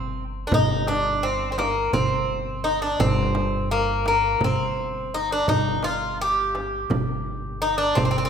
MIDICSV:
0, 0, Header, 1, 5, 480
1, 0, Start_track
1, 0, Tempo, 709220
1, 350, Time_signature, 7, 3, 24, 8
1, 5615, End_track
2, 0, Start_track
2, 0, Title_t, "Bouzouki"
2, 0, Program_c, 0, 25
2, 0, Note_on_c, 0, 60, 69
2, 155, Note_off_c, 0, 60, 0
2, 320, Note_on_c, 0, 62, 65
2, 359, Note_off_c, 0, 62, 0
2, 365, Note_on_c, 0, 63, 85
2, 593, Note_off_c, 0, 63, 0
2, 596, Note_on_c, 0, 62, 77
2, 833, Note_on_c, 0, 60, 73
2, 840, Note_off_c, 0, 62, 0
2, 1020, Note_off_c, 0, 60, 0
2, 1029, Note_on_c, 0, 60, 54
2, 1070, Note_off_c, 0, 60, 0
2, 1073, Note_on_c, 0, 58, 80
2, 1307, Note_off_c, 0, 58, 0
2, 1310, Note_on_c, 0, 60, 76
2, 1788, Note_on_c, 0, 63, 74
2, 1804, Note_off_c, 0, 60, 0
2, 1905, Note_off_c, 0, 63, 0
2, 1908, Note_on_c, 0, 62, 69
2, 2030, Note_on_c, 0, 60, 82
2, 2032, Note_off_c, 0, 62, 0
2, 2511, Note_off_c, 0, 60, 0
2, 2513, Note_on_c, 0, 58, 77
2, 2751, Note_off_c, 0, 58, 0
2, 2760, Note_on_c, 0, 58, 78
2, 3002, Note_off_c, 0, 58, 0
2, 3007, Note_on_c, 0, 60, 75
2, 3481, Note_on_c, 0, 63, 83
2, 3492, Note_off_c, 0, 60, 0
2, 3599, Note_off_c, 0, 63, 0
2, 3603, Note_on_c, 0, 62, 76
2, 3712, Note_off_c, 0, 62, 0
2, 3714, Note_on_c, 0, 63, 81
2, 3935, Note_off_c, 0, 63, 0
2, 3954, Note_on_c, 0, 65, 86
2, 4175, Note_off_c, 0, 65, 0
2, 4206, Note_on_c, 0, 67, 83
2, 5153, Note_off_c, 0, 67, 0
2, 5155, Note_on_c, 0, 63, 83
2, 5262, Note_off_c, 0, 63, 0
2, 5264, Note_on_c, 0, 62, 75
2, 5383, Note_on_c, 0, 60, 85
2, 5391, Note_off_c, 0, 62, 0
2, 5439, Note_off_c, 0, 60, 0
2, 5449, Note_on_c, 0, 60, 59
2, 5480, Note_off_c, 0, 60, 0
2, 5488, Note_on_c, 0, 60, 70
2, 5528, Note_off_c, 0, 60, 0
2, 5536, Note_on_c, 0, 60, 66
2, 5576, Note_off_c, 0, 60, 0
2, 5584, Note_on_c, 0, 60, 74
2, 5615, Note_off_c, 0, 60, 0
2, 5615, End_track
3, 0, Start_track
3, 0, Title_t, "Upright bass"
3, 0, Program_c, 1, 32
3, 0, Note_on_c, 1, 31, 79
3, 325, Note_off_c, 1, 31, 0
3, 349, Note_on_c, 1, 31, 84
3, 1282, Note_off_c, 1, 31, 0
3, 1307, Note_on_c, 1, 31, 81
3, 2001, Note_off_c, 1, 31, 0
3, 2030, Note_on_c, 1, 31, 85
3, 2963, Note_off_c, 1, 31, 0
3, 2986, Note_on_c, 1, 31, 78
3, 3681, Note_off_c, 1, 31, 0
3, 3706, Note_on_c, 1, 31, 83
3, 4641, Note_off_c, 1, 31, 0
3, 4675, Note_on_c, 1, 31, 84
3, 5366, Note_off_c, 1, 31, 0
3, 5398, Note_on_c, 1, 31, 80
3, 5615, Note_off_c, 1, 31, 0
3, 5615, End_track
4, 0, Start_track
4, 0, Title_t, "Darbuka"
4, 349, Note_on_c, 9, 64, 87
4, 417, Note_off_c, 9, 64, 0
4, 592, Note_on_c, 9, 63, 61
4, 659, Note_off_c, 9, 63, 0
4, 1069, Note_on_c, 9, 63, 59
4, 1136, Note_off_c, 9, 63, 0
4, 1190, Note_on_c, 9, 62, 25
4, 1258, Note_off_c, 9, 62, 0
4, 1307, Note_on_c, 9, 64, 79
4, 1375, Note_off_c, 9, 64, 0
4, 1550, Note_on_c, 9, 62, 23
4, 1618, Note_off_c, 9, 62, 0
4, 2027, Note_on_c, 9, 64, 76
4, 2095, Note_off_c, 9, 64, 0
4, 2266, Note_on_c, 9, 63, 56
4, 2334, Note_off_c, 9, 63, 0
4, 2508, Note_on_c, 9, 62, 22
4, 2575, Note_off_c, 9, 62, 0
4, 2747, Note_on_c, 9, 63, 60
4, 2815, Note_off_c, 9, 63, 0
4, 2872, Note_on_c, 9, 62, 25
4, 2940, Note_off_c, 9, 62, 0
4, 2982, Note_on_c, 9, 64, 70
4, 3050, Note_off_c, 9, 64, 0
4, 3227, Note_on_c, 9, 62, 24
4, 3295, Note_off_c, 9, 62, 0
4, 3707, Note_on_c, 9, 64, 73
4, 3775, Note_off_c, 9, 64, 0
4, 3943, Note_on_c, 9, 63, 59
4, 4011, Note_off_c, 9, 63, 0
4, 4188, Note_on_c, 9, 62, 22
4, 4255, Note_off_c, 9, 62, 0
4, 4432, Note_on_c, 9, 63, 58
4, 4500, Note_off_c, 9, 63, 0
4, 4670, Note_on_c, 9, 64, 76
4, 4737, Note_off_c, 9, 64, 0
4, 4914, Note_on_c, 9, 62, 26
4, 4982, Note_off_c, 9, 62, 0
4, 5156, Note_on_c, 9, 62, 25
4, 5224, Note_off_c, 9, 62, 0
4, 5392, Note_on_c, 9, 64, 82
4, 5459, Note_off_c, 9, 64, 0
4, 5615, End_track
5, 0, Start_track
5, 0, Title_t, "Frame drum"
5, 351, Note_on_c, 9, 64, 82
5, 418, Note_off_c, 9, 64, 0
5, 592, Note_on_c, 9, 64, 58
5, 660, Note_off_c, 9, 64, 0
5, 1072, Note_on_c, 9, 64, 71
5, 1140, Note_off_c, 9, 64, 0
5, 1311, Note_on_c, 9, 64, 72
5, 1379, Note_off_c, 9, 64, 0
5, 2030, Note_on_c, 9, 64, 80
5, 2097, Note_off_c, 9, 64, 0
5, 2267, Note_on_c, 9, 64, 61
5, 2335, Note_off_c, 9, 64, 0
5, 2746, Note_on_c, 9, 64, 58
5, 2814, Note_off_c, 9, 64, 0
5, 2983, Note_on_c, 9, 64, 77
5, 3051, Note_off_c, 9, 64, 0
5, 3709, Note_on_c, 9, 64, 79
5, 3776, Note_off_c, 9, 64, 0
5, 3951, Note_on_c, 9, 64, 52
5, 4018, Note_off_c, 9, 64, 0
5, 4436, Note_on_c, 9, 64, 54
5, 4503, Note_off_c, 9, 64, 0
5, 4674, Note_on_c, 9, 64, 77
5, 4742, Note_off_c, 9, 64, 0
5, 5396, Note_on_c, 9, 64, 83
5, 5463, Note_off_c, 9, 64, 0
5, 5615, End_track
0, 0, End_of_file